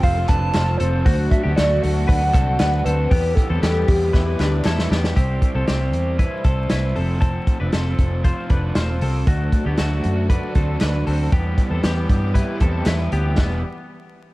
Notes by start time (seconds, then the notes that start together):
Already playing: C3 F3 A3 C4 F4 A4
0.03 F1 F4 C5 F5, kick, hi-hat pedal, open hi-hat
0.17 C4 F4 A4
0.28 F1 A3 C4 D4 F4 A4 B4 A5, kick, clap, hi-hat pedal, open hi-hat
0.54 F1 F4 C5, snare, clap, hi-hat pedal, open hi-hat
0.77 F1 A3 C4 A4 C5, hi-hat pedal, open hi-hat
0.82 F4 A4
1.04 D2 D3 F#3 A3 D4 F#4 A4 C5, kick, hi-hat pedal, open hi-hat
1.30 E5, kick, hi-hat pedal, open hi-hat
1.43 D2 B3 D4 F#4 G4 A4
1.56 D2 A3 F#4 D5, snare, clap, hi-hat pedal, open hi-hat
1.82 D2 A3 D4 F#4 A4 F#5, hi-hat pedal, open hi-hat
2.08 D2 D4 B4, kick, hi-hat pedal, open hi-hat
2.20 D4 F#4 A4
2.32 C2 A3 C4 D4 F#4 A4, kick, clap, hi-hat pedal, open hi-hat
2.60 D2 D4 B4, snare, clap, hi-hat pedal, open hi-hat
2.85 D2 A3 C4 D4 F#4 A4 B4, hi-hat pedal, open hi-hat
3.10 E2 E3 G3 B3 E4 G4 B4, kick, hi-hat pedal, open hi-hat
3.35 A4, kick, hi-hat pedal, open hi-hat
3.49 E2 C4 E4 G4 A4 B4
3.62 E2 B3 G4 A4, snare, clap, hi-hat pedal, open hi-hat
3.88 E2 G3 E4 G4 B4, kick, hi-hat pedal, open hi-hat
4.13 E2 E4 B4, kick, snare
4.26 E4 G4 B4
4.39 D2 G3 D4 E4 G4 B4, snare, clap
4.64 E2 E4 A4, snare, clap
4.79 snare
4.90 E2 G3 B3 E4 G4 B4, snare
5.04 snare
5.15 C2 G3 C4 E4 G4 C5, kick, closed hi-hat
5.42 kick, closed hi-hat
5.54 C2 G3 C4 E4 A4 C5
5.67 C2 C4 G4, snare, closed hi-hat
5.80 G3 C4 E4 C5
5.93 E2, closed hi-hat
6.18 C3 E3 G3 C4 E4 B4 C5, kick, closed hi-hat
6.44 C2 G3 C4 E4 A4 C5, kick, closed hi-hat
6.70 C2 E4 B4, snare, closed hi-hat
6.83 G3 C4 E4 C5
6.96 F1 F3 A3 C4 F4 A4, open hi-hat
7.21 C4 A4, kick, closed hi-hat
7.47 kick, closed hi-hat
7.60 F1 C4 D4 F4 A4 B4
7.73 F1 C4 A4, snare, closed hi-hat
7.86 C4 F4 A4
7.99 F1, kick, closed hi-hat
8.24 F3 A3 C4 F4 A4 C5, kick, closed hi-hat
8.50 F1 A3 C4 D4 F4 A4 B4, kick, closed hi-hat
8.75 E1 F4 C5, snare, closed hi-hat
8.88 C4 F4 A4
9.01 C2 C4 A4, open hi-hat
9.26 D2 D3 F#3 A3 D4 F#4 A4, kick, closed hi-hat
9.52 kick, closed hi-hat
9.65 D2 B3 D4 F#4 G4 A4
9.78 D2 A3 F#4, snare, clap, closed hi-hat
9.90 D4 F#4 A4
10.04 F#2, closed hi-hat
10.28 D3 A3 D4 F#4 A4 B4, kick, closed hi-hat
10.54 D2 A3 C4 D4 F#4 A4, kick, closed hi-hat
10.80 D2 D4 B4, snare, clap, closed hi-hat
10.93 D4 F#4 A4
11.07 D2 C4 A4, open hi-hat
11.31 E2 E3 G3 B3 E4 G4 B4, kick, closed hi-hat
11.58 kick, closed hi-hat
11.70 E2 C4 E4 G4 A4 B4
11.83 E2 B3 G4, snare, clap, closed hi-hat
11.96 E4 G4 B4
12.09 G2, kick, closed hi-hat
12.34 E3 G3 E4 G4 B4, kick, closed hi-hat
12.60 E2 G3 C4 E4 G4 A4 B4, kick, closed hi-hat
12.86 E2 E4 B4, snare, clap, closed hi-hat
12.99 E4 G4 B4
13.12 D2 B3 G4, closed hi-hat
13.37 E1 E3 G3 B3 E4 G4 B4, kick, snare, clap